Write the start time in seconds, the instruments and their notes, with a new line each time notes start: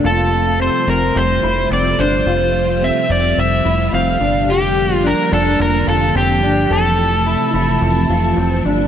Already playing: string machine C3 A3
0.04 analog synth bass F1, string machine F3 G3 F4, clean electric guitar F4, electric slide guitar A4
0.60 clean electric guitar C4, electric slide guitar C5
0.87 analog synth bass F1, clean electric guitar C4, electric slide guitar A#4
1.15 analog synth bass F1, electric slide guitar C5
1.43 analog synth bass F1, clean electric guitar E4
1.71 analog synth bass F1, clean electric guitar C4, electric slide guitar D5
1.99 analog synth bass G1, clean electric guitar D4, electric slide guitar C5
2.26 analog synth bass F1, clean electric guitar F4
2.82 clean electric guitar C4, electric slide guitar E5
3.10 analog synth bass F1, clean electric guitar C4, electric slide guitar D5
3.38 analog synth bass F1, electric slide guitar E5
3.65 analog synth bass F1, clean electric guitar E4
3.93 analog synth bass F1, clean electric guitar C4, electric slide guitar F5
4.21 analog synth bass G1, clean electric guitar D4
4.48 analog synth bass F1, string machine D3 A#3 F4, clean electric guitar G4, electric slide guitar G4
4.95 electric slide guitar F4
5.04 clean electric guitar D4, electric slide guitar A#4
5.32 analog synth bass F1, clean electric guitar D4, electric slide guitar A4
5.59 analog synth bass F1, electric slide guitar A#4
5.87 analog synth bass F1, clean electric guitar F4, electric slide guitar A4
6.15 analog synth bass F1, clean electric guitar C4, electric slide guitar G4
6.43 analog synth bass G1, clean electric guitar D4
6.69 analog synth bass F1, string machine C3 E3 A3 E4, clean electric guitar A4, electric slide guitar A4
7.26 clean electric guitar E4
7.54 analog synth bass F1, clean electric guitar E4
7.82 analog synth bass F1
8.09 analog synth bass F1, clean electric guitar F4
8.37 analog synth bass F1, clean electric guitar C4
8.65 analog synth bass G1, clean electric guitar D4